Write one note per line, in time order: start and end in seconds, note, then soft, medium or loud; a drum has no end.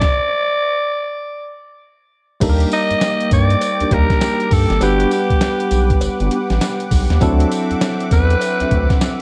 0.00 1.52 D5 loud
0.00 kick loud
0.00 snare medium
2.40 2.66 D#2 loud
2.40 3.88 G3 medium
2.40 2.69 A#3 medium
2.40 3.88 A#3 medium
2.40 4.79 A#3 medium
2.40 2.70 D4 medium
2.40 2.70 D#4 medium
2.40 3.89 D#4 medium
2.40 2.70 G4 loud
2.40 2.50 A4 medium
2.40 4.79 G5 medium
2.40 7.18 D6 medium
2.40 kick loud
2.40 closed hi-hat medium
2.40 crash loud
2.40 tambourine medium
2.40 cowbell medium
2.49 3.92 A#4 loud
2.60 closed hi-hat medium
2.72 3.28 D#5 loud
2.72 closed hi-hat medium
2.72 tambourine medium
2.91 2.95 G2 soft
2.91 closed hi-hat medium
3.01 snare loud
3.01 closed hi-hat medium
3.01 tambourine loud
3.01 cowbell medium
3.20 closed hi-hat medium
3.31 3.56 G2 loud
3.31 3.94 D5 loud
3.31 kick medium
3.31 closed hi-hat medium
3.31 tambourine medium
3.50 closed hi-hat medium
3.61 closed hi-hat medium
3.61 tambourine medium
3.61 cowbell medium
3.80 3.85 D#2 soft
3.80 3.97 A#3 medium
3.80 3.97 D4 medium
3.80 3.97 D#4 medium
3.80 3.97 G4 medium
3.80 closed hi-hat medium
3.91 4.07 D#2 medium
3.91 4.79 G3 medium
3.91 4.81 A#3 medium
3.91 4.80 D4 soft
3.91 4.82 D#4 soft
3.91 4.82 G4 medium
3.91 4.54 A#4 loud
3.91 kick loud
3.91 closed hi-hat medium
4.10 kick loud
4.10 snare medium
4.10 closed hi-hat soft
4.21 snare loud
4.21 closed hi-hat medium
4.21 tambourine loud
4.21 cowbell medium
4.40 closed hi-hat soft
4.51 4.67 G2 loud
4.51 4.84 A4 loud
4.51 kick medium
4.51 open hi-hat medium
4.51 tambourine medium
4.70 4.79 G#1 medium
4.70 snare medium
4.70 closed hi-hat soft
4.80 5.06 G1 loud
4.80 7.17 G3 medium
4.80 7.17 B3 medium
4.80 5.09 B3 loud
4.80 5.10 D4 medium
4.80 7.17 D4 medium
4.80 5.10 F#4 medium
4.80 7.19 G4 medium
4.80 5.10 G4 loud
4.80 5.12 G4 loud
4.80 7.19 B4 medium
4.80 7.18 B4 medium
4.80 9.22 F#5 medium
4.80 7.18 F#5 medium
4.80 closed hi-hat medium
4.80 tambourine medium
4.80 cowbell medium
5.00 closed hi-hat medium
5.11 5.98 G4 medium
5.11 closed hi-hat medium
5.11 tambourine medium
5.30 5.35 B1 soft
5.30 kick medium
5.30 closed hi-hat medium
5.41 snare loud
5.41 closed hi-hat medium
5.41 tambourine medium
5.41 cowbell medium
5.60 closed hi-hat medium
5.71 5.96 B1 loud
5.71 closed hi-hat medium
5.71 tambourine medium
5.90 kick medium
5.90 closed hi-hat medium
6.01 6.09 G1 medium
6.01 closed hi-hat medium
6.01 tambourine medium
6.01 cowbell medium
6.20 6.29 G1 loud
6.20 6.37 B3 medium
6.20 6.37 D4 medium
6.20 6.37 F#4 medium
6.20 6.37 G4 medium
6.20 closed hi-hat soft
6.31 closed hi-hat medium
6.50 6.59 A1 medium
6.50 snare medium
6.50 closed hi-hat soft
6.61 snare loud
6.61 closed hi-hat medium
6.61 tambourine loud
6.61 cowbell medium
6.80 closed hi-hat soft
6.91 7.07 B1 loud
6.91 kick medium
6.91 open hi-hat medium
6.91 tambourine medium
7.10 7.19 D#2 loud
7.10 snare medium
7.10 closed hi-hat soft
7.20 7.46 D2 loud
7.20 9.22 F#3 medium
7.20 9.22 C4 medium
7.20 7.49 C4 medium
7.20 9.22 C4 medium
7.20 7.50 D4 medium
7.20 9.22 D4 medium
7.20 7.50 E4 medium
7.20 9.22 E4 medium
7.20 7.50 F#4 loud
7.20 9.22 A4 loud
7.20 9.22 E5 medium
7.20 9.22 D6 medium
7.20 kick loud
7.20 closed hi-hat medium
7.20 tambourine medium
7.20 cowbell medium
7.40 closed hi-hat medium
7.51 closed hi-hat medium
7.51 tambourine medium
7.71 7.75 E2 soft
7.71 closed hi-hat soft
7.81 snare loud
7.81 closed hi-hat medium
7.81 tambourine loud
7.81 cowbell medium
8.00 closed hi-hat soft
8.11 8.36 E2 medium
8.11 8.98 B4 loud
8.11 kick medium
8.11 closed hi-hat medium
8.11 tambourine medium
8.30 closed hi-hat medium
8.41 closed hi-hat medium
8.41 tambourine medium
8.41 cowbell medium
8.60 8.65 D2 soft
8.60 8.77 C4 medium
8.60 8.77 D4 medium
8.60 8.77 E4 medium
8.60 8.77 F#4 medium
8.60 closed hi-hat medium
8.71 8.87 D2 loud
8.71 kick medium
8.71 closed hi-hat medium
8.90 kick loud
8.90 snare medium
8.90 closed hi-hat soft
9.01 snare loud
9.01 closed hi-hat medium
9.01 tambourine loud
9.01 cowbell medium